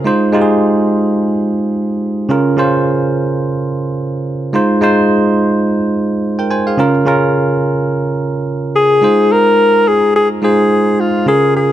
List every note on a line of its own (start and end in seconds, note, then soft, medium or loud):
0.04 0.27 G#3 medium
0.04 0.28 D#4 medium
0.04 0.28 F4 medium
0.04 0.29 C5 loud
0.33 1.18 G#3 medium
0.33 1.19 D#4 medium
0.33 1.19 F4 medium
0.33 0.42 G4 medium
0.42 1.23 G#4 loud
2.29 2.52 C#3 medium
2.29 2.52 C#4 medium
2.29 2.53 F4 medium
2.29 2.53 A#4 loud
2.57 3.43 C#3 medium
2.57 3.43 C#4 medium
2.57 3.44 F4 medium
2.57 3.44 C5 loud
4.53 4.76 G#3 medium
4.53 4.76 D#4 medium
4.53 4.77 F4 medium
4.53 4.77 C5 loud
4.81 5.67 G#3 medium
4.81 5.67 D#4 medium
4.81 5.68 F4 medium
4.81 5.68 C5 loud
6.39 6.50 A#4 medium
6.39 6.50 G5 medium
6.51 6.66 C5 medium
6.51 6.66 G#5 medium
6.67 6.94 G#4 medium
6.67 6.94 F5 medium
6.77 7.00 C#3 medium
6.77 7.01 C#4 medium
6.77 7.01 F4 medium
6.77 7.02 A#4 loud
7.05 7.91 C#3 medium
7.05 7.92 C#4 medium
7.05 7.92 F4 medium
7.05 7.93 A#4 loud
8.76 9.33 G#4 loud
9.02 9.88 G#3 medium
9.02 9.88 D#4 medium
9.02 9.88 F4 medium
9.02 9.89 C5 medium
9.32 9.89 A#4 loud
9.88 10.15 G#4 loud
10.16 10.28 G#4 loud
10.42 11.08 G#3 medium
10.42 11.08 D#4 medium
10.42 11.08 F4 medium
10.42 11.02 G#4 loud
10.42 11.09 C5 medium
11.00 11.27 F4 medium
11.26 11.72 C#3 medium
11.26 11.72 C#4 medium
11.26 11.72 F4 medium
11.26 11.54 G#4 loud
11.26 11.72 A#4 medium
11.56 11.72 G#4 loud